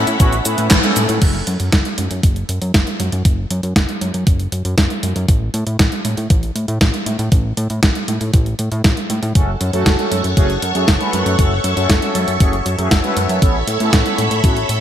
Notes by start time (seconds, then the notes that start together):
Already playing: C#4 E4 A4 C#5 F#5 B5
0.07 A2, closed hi-hat, cabasa
0.20 A1 B3 C#4 E4 F#4, kick, closed hi-hat, cabasa
0.33 closed hi-hat, cabasa
0.45 A2 B3 C#4 E4 B4, closed hi-hat, cabasa
0.58 A2, closed hi-hat, cabasa
0.71 A1, kick, snare, clap, closed hi-hat, cabasa
0.83 B3 C#4 E4 A4, closed hi-hat, cabasa
0.96 A2, closed hi-hat, cabasa
1.09 A2, closed hi-hat, cabasa
1.22 F#1, kick, closed hi-hat, crash
1.47 F#2, closed hi-hat
1.60 F#2, closed hi-hat
1.72 F#1, kick, snare, closed hi-hat
1.85 closed hi-hat
1.98 F#2, closed hi-hat
2.11 F#2, closed hi-hat
2.23 F#1, kick, closed hi-hat
2.36 closed hi-hat
2.49 F#2, closed hi-hat
2.62 F#2, closed hi-hat
2.74 F#1, kick, snare, closed hi-hat
2.87 closed hi-hat
3.00 F#2, closed hi-hat
3.12 F#2, closed hi-hat
3.25 F#1, kick, closed hi-hat
3.51 F#2, closed hi-hat
3.63 F#2, closed hi-hat
3.76 F#1, kick, snare, closed hi-hat
3.89 closed hi-hat
4.01 F#2, closed hi-hat
4.14 F#2, closed hi-hat
4.27 F#1, kick, closed hi-hat
4.40 closed hi-hat
4.52 F#2, closed hi-hat
4.65 F#2, closed hi-hat
4.78 F#1, kick, snare, closed hi-hat
4.90 closed hi-hat
5.03 F#2, closed hi-hat
5.16 F#2, closed hi-hat
5.28 A1, kick, closed hi-hat
5.54 A2, closed hi-hat
5.67 A2, closed hi-hat
5.79 A1, kick, snare, closed hi-hat
5.92 closed hi-hat
6.05 A2, closed hi-hat
6.17 A2, closed hi-hat
6.30 A1, kick, closed hi-hat
6.43 closed hi-hat
6.55 A2, closed hi-hat
6.68 A2, closed hi-hat
6.81 A1, kick, snare, closed hi-hat
6.94 closed hi-hat
7.06 A2, closed hi-hat
7.19 A2, closed hi-hat
7.32 A1, kick, closed hi-hat
7.57 A2, closed hi-hat
7.70 A2, closed hi-hat
7.83 A1, kick, snare, closed hi-hat
7.95 closed hi-hat
8.08 A2, closed hi-hat
8.21 A2, closed hi-hat
8.34 A1, kick, closed hi-hat
8.46 closed hi-hat
8.59 A2, closed hi-hat
8.72 A2, closed hi-hat
8.84 A1, kick, snare, closed hi-hat
8.97 closed hi-hat
9.10 A2, closed hi-hat
9.23 A2, closed hi-hat
9.35 F#1 A3 C#4 F#4 A4 C#5 F#5 C#6, kick, closed hi-hat
9.61 F#2, closed hi-hat
9.73 F#2 A3 C#4 F#4 A4, closed hi-hat
9.86 F#1, kick, snare, closed hi-hat
9.99 A3 C#4 F#4 A4, closed hi-hat
10.12 F#2, closed hi-hat
10.24 F#2, closed hi-hat
10.37 F#1 A3 C#4 F#4 G#4, kick, closed hi-hat
10.50 closed hi-hat
10.62 F#2, closed hi-hat
10.75 F#2 A3 C#4 F#4 G#4, closed hi-hat
10.88 F#1, kick, snare, closed hi-hat
11.01 A3 C#4 F#4 B4, closed hi-hat
11.13 F#2, closed hi-hat
11.26 F#2, closed hi-hat
11.39 F#1 A3 C#4 F#4 A4 E5, kick, closed hi-hat
11.64 F#2, closed hi-hat
11.77 F#2 A3 C#4 F#4 A4, closed hi-hat
11.90 F#1, kick, snare, closed hi-hat
12.02 A3 C#4 F#4 A4, closed hi-hat
12.15 F#2, closed hi-hat
12.28 F#2, closed hi-hat
12.40 F#1 A3 C#4 F#4 G#4, kick, closed hi-hat
12.53 closed hi-hat
12.66 F#2, closed hi-hat
12.79 F#2 A3 C#4 F#4 G#4, closed hi-hat
12.91 F#1, kick, snare, closed hi-hat
13.04 A3 C#4 F#4 B4, closed hi-hat
13.17 F#2, closed hi-hat
13.29 F#2, closed hi-hat
13.42 A1 B3 C#4 E4 A4 C#5 B5, kick, closed hi-hat
13.67 A2, closed hi-hat
13.80 A2 B3 C#4 E4 A4, closed hi-hat
13.93 A1, kick, snare, closed hi-hat
14.06 B3 C#4 E4 A4, closed hi-hat
14.18 A2, closed hi-hat
14.31 A2, closed hi-hat
14.44 A1 B3 C#4 E4 F#4, kick, closed hi-hat
14.57 closed hi-hat
14.69 A2, closed hi-hat